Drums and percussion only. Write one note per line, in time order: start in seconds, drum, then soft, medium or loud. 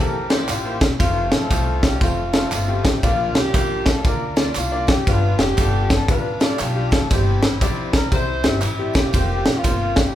0.00 tambourine medium
0.30 snare loud
0.30 ride medium
0.30 tambourine medium
0.48 clap loud
0.48 ride medium
0.48 tambourine loud
0.81 kick loud
0.81 snare loud
0.81 ride medium
0.81 tambourine medium
1.00 kick loud
1.00 ride medium
1.00 tambourine medium
1.31 snare loud
1.31 ride medium
1.31 tambourine soft
1.51 kick loud
1.51 clap medium
1.51 ride medium
1.51 tambourine loud
1.83 kick medium
1.83 snare medium
1.83 ride medium
1.83 tambourine medium
2.01 kick loud
2.01 ride medium
2.01 tambourine medium
2.33 snare loud
2.33 ride medium
2.33 tambourine medium
2.52 clap loud
2.52 ride medium
2.52 tambourine loud
2.84 kick medium
2.84 snare loud
2.84 ride medium
2.84 tambourine medium
3.03 kick loud
3.03 ride medium
3.03 tambourine medium
3.35 snare loud
3.35 ride medium
3.35 tambourine soft
3.54 kick loud
3.54 clap loud
3.54 ride medium
3.54 tambourine loud
3.86 kick medium
3.86 snare loud
3.86 ride medium
3.86 tambourine medium
4.05 kick loud
4.05 ride medium
4.05 tambourine medium
4.36 snare loud
4.36 ride medium
4.36 tambourine medium
4.55 clap loud
4.55 ride medium
4.55 tambourine loud
4.87 kick medium
4.87 snare loud
4.87 ride medium
4.87 tambourine medium
5.07 kick loud
5.07 ride medium
5.07 tambourine medium
5.39 snare loud
5.39 ride medium
5.39 tambourine medium
5.58 kick medium
5.58 clap loud
5.58 ride medium
5.58 tambourine loud
5.90 kick medium
5.90 snare medium
5.90 ride medium
5.90 tambourine medium
6.08 kick loud
6.08 ride medium
6.08 tambourine medium
6.40 snare loud
6.40 ride medium
6.40 tambourine medium
6.59 clap loud
6.59 ride medium
6.59 tambourine loud
6.91 kick loud
6.91 snare loud
6.91 ride medium
6.91 tambourine medium
7.10 kick loud
7.10 ride medium
7.10 tambourine medium
7.42 snare loud
7.42 ride medium
7.42 tambourine soft
7.61 kick loud
7.61 clap medium
7.61 ride medium
7.61 tambourine loud
7.93 kick loud
7.93 snare loud
7.93 ride medium
7.93 tambourine medium
8.12 kick loud
8.12 ride medium
8.12 tambourine medium
8.43 snare loud
8.43 ride medium
8.43 tambourine medium
8.61 clap loud
8.61 ride medium
8.61 tambourine loud
8.93 kick loud
8.93 snare loud
8.93 ride medium
8.93 tambourine medium
9.13 kick loud
9.13 ride medium
9.13 tambourine medium
9.45 snare loud
9.45 ride medium
9.45 tambourine medium
9.64 kick medium
9.64 clap medium
9.64 ride medium
9.64 tambourine loud
9.96 kick medium
9.96 snare loud
9.96 ride medium
9.96 tambourine medium